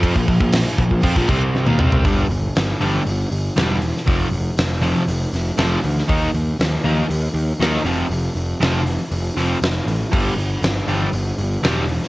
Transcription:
<<
  \new Staff \with { instrumentName = "Overdriven electric guitar" } { \clef bass \time 4/4 \key g \minor \tempo 4 = 119 <f c' f'>16 <bes, f>16 <bes, f>16 <bes, f>8 r16 <bes, f>16 <bes, f>16 <f c'>16 <bes, f>16 <c g c'>8. <ees bes>16 <c g c'>8 | <g, d g>8 r4 <g, d g>8 r4 <g, d g>8 r8 | <f, c f>8 r4 <f, c f>8 r4 <f, c f>8 r8 | <ees bes ees'>8 r4 <ees bes ees'>8 r4 <ees bes ees'>8 <f, c f>8 |
r4 <f, c f>8 r4 <f, c f>8 r4 | <g, d g>8 r4 <g, d g>8 r4 <g, d g>8 r8 | }
  \new Staff \with { instrumentName = "Picked electric bass" } { \clef bass \time 4/4 \key g \minor f,16 bes,,16 bes,,16 bes,,8 r16 bes,,16 bes,,16 f,16 bes,,16 c,8. ees,16 c,8 | g,,8 g,,8 g,,8 g,,8 g,,8 g,,8 e,,4 | f,,8 f,,8 f,,4 f,,8 f,,8 f,,8 d,8 | ees,8 ees,8 ees,8 ees,8 ees,8 ees,8 ees,8 f,,8 |
f,,8 f,,8 f,,4 f,,8 f,,8 f,,8 a,,8 | g,,8 g,,8 g,,8 g,,8 g,,8 g,,8 e,,4 | }
  \new DrumStaff \with { instrumentName = "Drums" } \drummode { \time 4/4 <cymc bd>16 bd16 <cymc bd>16 bd16 <cymc sn>8 <cymc bd>16 bd16 <cymc bd>16 bd16 <cymc bd>8 sn16 tommh16 toml16 tomfh16 | <hho bd>8 hho8 <hho sn>8 hho8 hho8 hho8 <hho sn>8 hho16 sn16 | <hho bd>8 hho8 <hho sn>8 hho8 hho8 <hho sn>8 <hho sn>8 hho16 sn16 | <hho bd>8 hho8 <hho sn>8 hho8 hho8 hho8 <hho sn>8 hho8 |
hho8 hho8 <hho sn>8 hho8 hho8 <hho sn>8 <hho sn>8 hho8 | <cymc bd>8 hho8 <hho sn>8 hho8 hho8 hho8 <hho sn>8 hho16 sn16 | }
>>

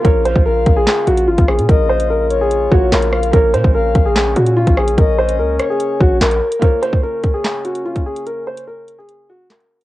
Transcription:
<<
  \new Staff \with { instrumentName = "Soft synth lead" } { \time 4/4 \key bes \minor \tempo 4 = 146 r4 f''4 r2 | ees''4. des''2 f''8 | r4 f''4 r2 | ees''4. des''4. r4 |
r1 | r1 | }
  \new Staff \with { instrumentName = "Grand piano" } { \time 4/4 \key bes \minor bes'8 c''8 bes'8. aes'8. ges'8 f'8 aes'8 | bes'8 c''8 bes'8. aes'8. ges'8 bes'4 | bes'8 c''8 bes'8. aes'8. ges'8 f'8 aes'8 | bes'8 c''8 bes'8. aes'8. ges'8 bes'4 |
bes'8 c''8 bes'8. aes'8. ges'8 f'8 aes'8 | bes'8 c''8 bes'8. aes'8. ges'8 bes'4 | }
  \new Staff \with { instrumentName = "Felt piano" } { \time 4/4 \key bes \minor <bes f' bes' des''>1~ | <bes f' bes' des''>2~ <bes f' bes' des''>8 <bes f' bes' des''>4. | <bes f' bes' des''>1~ | <bes f' bes' des''>1 |
<bes f' c'' des''>1~ | <bes f' c'' des''>1 | }
  \new Staff \with { instrumentName = "Brass ensemble" } { \time 4/4 \key bes \minor << { <bes f'>1~ | <bes f'>1 | <bes des'>1~ | <bes des'>1 |
<bes des'>1~ | <bes des'>1 | } \\ { des1~ | des1~ | des1~ | des1 |
des1~ | des1 | } >> }
  \new Staff \with { instrumentName = "808-style bass" } { \clef bass \time 4/4 \key bes \minor bes,,8. bes,,8. bes,,8 r8 bes,,8 aes,,16 bes,,8 bes,16 | bes,,2~ bes,,8 bes,,8 bes,,4 | bes,,8 bes,16 bes,,8. bes,,4 bes,8. bes,,8. | bes,,4 des,8 r4 bes,,8 bes,,8 r8 |
r1 | r1 | }
  \new DrumStaff \with { instrumentName = "Drums" } \drummode { \time 4/4 <hh bd>8 hh16 bd16 r8 <hh bd>8 <hc sn>8 hh16 hh16 r16 <hh bd>16 ss16 hh16 | <hh bd>8. hh16 r8 hh8 hh8 bd8 <hc hh sn>16 hh16 ss16 hh16 | <hh bd>8 hh16 bd16 r8 <hh bd>8 <hc sn>8 hh16 hh16 r16 <hh bd>16 ss16 hh16 | <hh bd>8. hh16 r8 <hh ss>8 hh8 bd8 <hc hh sn>16 hh8 hh16 |
<hh bd>8 hh16 bd16 r8 <hh bd>8 <hc sn>8 hh16 hh16 r16 <hh bd>8 hh16 | hh8. hh16 r8 hh8 hh4 <hc hh sn>16 hh8 hh16 | }
>>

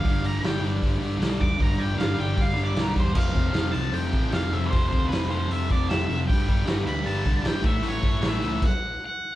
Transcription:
<<
  \new Staff \with { instrumentName = "Lead electric guitar" } { \time 4/4 \key c \lydian \tempo 4 = 154 f''8 bes''8 g''8 r2 d'''8 | bes''8 g''8 f''8 g''8 f''8 d''8 bes'8 c''8 | \key f \lydian f''4. a''8 g''4 f''8 e''16. b'32 | c''8 c''8 b'8 c''8 e''8 d''8 e''8. r16 |
g''4 r8 b''8 a''4 g''8 e''8 | cis''4 e''4 fis''4 fis''8. r16 | }
  \new Staff \with { instrumentName = "Transistor combo organ" } { \time 4/4 \key c \lydian <d' g' d''>1~ | <d' g' d''>1 | \key f \lydian <f' a' c''>1~ | <f' a' c''>1 |
<g' b' d''>2.~ <g' b' d''>8 <e' a' cis''>8~ | <e' a' cis''>2 r2 | }
  \new Staff \with { instrumentName = "Distorted electric guitar" } { \clef bass \time 4/4 \key c \lydian <g, d g>8 <d g>8 <g, d g>8 <d g>4 <d g>8 <g, d g>4 | <g, d g>8 <d g>8 <g, d g>8 <d g>4 <d g>8 <g, d g>4 | \key f \lydian <f, c f>8 <f, c f>8 <f, c f>8 <f, c f>8 <f, c f>8 <f, c f>8 <f, c f>8 <f, c f>8 | <f, c f>8 <f, c f>8 <f, c f>8 <f, c f>8 <f, c f>8 <f, c f>8 <f, c f>8 <f, c f>8 |
<g, d g>8 <g, d g>8 <g, d g>8 <g, d g>8 <g, d g>8 <g, d g>8 <g, d g>8 <a, e a>8 | <a, e a>8 <a, e a>8 <a, e a>8 <a, e a>8 r2 | }
  \new Staff \with { instrumentName = "Picked electric bass" } { \clef bass \time 4/4 \key c \lydian g,,8 g,,8 g,,8 g,,8 g,,8 g,,8 b,,8 e,8 | g,,8 g,,8 g,,8 g,,8 g,,8 g,,8 b,,8 e,8 | \key f \lydian f,,8 f,,8 f,,8 c,8 f,,8 a,,8 f,,8 f,8 | f,,8 d,8 f,,8 f,,8 f,4 f,,8 f,,8 |
g,,8 g,,8 g,,8 d,8 g,,8 c,8 g,,8 a,,8 | a,,8 g,,8 a,,8 cis,8 r2 | }
  \new DrumStaff \with { instrumentName = "Drums" } \drummode { \time 4/4 <hho bd>8 hho8 <hho sn>8 hho8 <hho bd>8 hho8 <hho sn>8 <hho bd>8 | <hho bd>8 hho8 <hho sn>8 hho8 <hho bd>8 hho8 <hho sn>8 <hho bd>8 | <cymc bd>8 <hho bd>8 <hho sn>8 hho8 hho8 <hho bd>8 <hho sn>8 hho8 | <hho bd>8 <hho bd>8 <hho sn>8 hho8 hho8 <hho bd>8 <hho sn>8 hho8 |
<hho bd>8 <hho bd>8 <hho sn>8 hho8 hho8 <hho bd>8 <hho sn>8 <hho bd>8 | hho8 <hho bd>8 <hho sn>8 hho8 <cymc bd>4 r4 | }
>>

